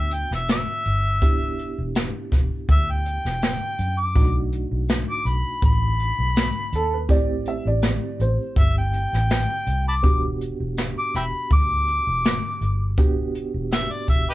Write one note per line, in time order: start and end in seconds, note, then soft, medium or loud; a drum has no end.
0.00 0.23 D2 medium
0.00 1.18 G3 medium
0.00 1.18 B3 medium
0.00 1.18 D4 medium
0.00 1.18 F#4 medium
0.00 0.16 E5 medium
0.11 0.31 G5 medium
0.11 closed hi-hat medium
0.31 0.63 E1 medium
0.31 0.49 E5 medium
0.31 snare soft
0.48 1.93 E5 medium
0.48 snare loud
0.48 closed hi-hat medium
0.85 1.22 G1 medium
0.85 closed hi-hat medium
1.22 1.70 E1 medium
1.22 4.12 B3 medium
1.22 4.12 D4 medium
1.22 4.12 E4 medium
1.22 4.12 G4 medium
1.22 kick loud
1.22 closed hi-hat medium
1.59 closed hi-hat medium
1.78 2.10 E1 medium
1.95 snare loud
1.95 closed hi-hat medium
2.32 2.49 E1 medium
2.32 kick medium
2.32 snare soft
2.32 closed hi-hat medium
2.69 3.17 D2 medium
2.69 2.92 E5 medium
2.69 kick loud
2.69 closed hi-hat medium
2.91 4.02 G5 medium
3.06 closed hi-hat medium
3.25 3.56 E1 medium
3.25 snare soft
3.42 snare loud
3.42 closed hi-hat medium
3.79 4.17 F#2 medium
3.79 closed hi-hat medium
4.00 4.35 D6 medium
4.15 4.64 B1 medium
4.15 7.06 A3 medium
4.15 7.06 D4 medium
4.15 7.06 D#4 medium
4.15 7.06 F#4 medium
4.15 kick loud
4.15 closed hi-hat medium
4.53 closed hi-hat medium
4.71 5.03 B1 medium
4.89 snare medium
4.89 closed hi-hat medium
5.10 5.29 D6 medium
5.25 5.42 B1 medium
5.25 5.62 B5 medium
5.25 closed hi-hat medium
5.62 6.11 A1 medium
5.62 7.07 B5 loud
5.62 kick loud
5.62 closed hi-hat medium
6.00 closed hi-hat medium
6.19 6.50 B1 medium
6.36 snare loud
6.36 closed hi-hat medium
6.73 7.09 D#2 medium
6.73 6.92 A4 medium
6.73 closed hi-hat medium
6.94 7.09 B4 medium
7.09 7.58 A1 medium
7.09 9.99 A3 medium
7.09 9.99 C4 medium
7.09 9.99 E4 medium
7.09 9.99 G4 medium
7.09 7.46 D5 medium
7.09 kick loud
7.09 closed hi-hat medium
7.46 7.65 E5 medium
7.46 closed hi-hat medium
7.65 7.97 A1 medium
7.65 8.19 D5 medium
7.82 snare loud
7.82 closed hi-hat medium
8.20 8.36 A1 medium
8.20 8.56 C5 medium
8.20 closed hi-hat medium
8.56 9.05 G1 medium
8.56 8.76 E5 medium
8.56 kick loud
8.56 closed hi-hat medium
8.78 9.84 G5 medium
8.93 closed hi-hat medium
9.13 9.44 A1 medium
9.13 snare soft
9.30 snare loud
9.30 closed hi-hat medium
9.67 10.05 C2 medium
9.67 closed hi-hat medium
9.88 9.95 A5 medium
9.88 9.95 B5 medium
9.88 10.23 D6 medium
10.03 10.52 E1 medium
10.03 12.93 B3 medium
10.03 12.93 D4 medium
10.03 12.93 F#4 medium
10.03 12.94 G4 medium
10.03 kick loud
10.03 closed hi-hat medium
10.41 closed hi-hat medium
10.60 10.91 E1 medium
10.77 snare loud
10.77 closed hi-hat medium
10.98 11.14 D6 medium
11.14 11.31 E1 medium
11.14 11.25 E5 medium
11.14 11.23 G5 medium
11.14 11.51 B5 medium
11.14 snare soft
11.14 closed hi-hat medium
11.51 11.99 D2 medium
11.51 12.95 D6 loud
11.51 kick loud
11.51 closed hi-hat medium
11.88 closed hi-hat medium
12.07 12.38 E1 medium
12.25 snare loud
12.25 closed hi-hat medium
12.61 12.98 G1 medium
12.61 closed hi-hat medium
12.98 13.46 E1 medium
12.98 14.34 B3 medium
12.98 14.34 D4 medium
12.98 14.34 F#4 medium
12.98 14.34 G4 medium
12.98 kick loud
12.98 closed hi-hat medium
13.35 closed hi-hat medium
13.54 13.85 E1 medium
13.72 13.93 E5 medium
13.72 snare medium
13.72 closed hi-hat medium
13.92 14.07 D5 medium
14.08 14.25 E1 medium
14.08 14.27 E5 medium
14.08 kick medium
14.08 closed hi-hat medium
14.30 14.34 G4 medium
14.30 14.34 B4 medium
14.30 14.34 D#5 medium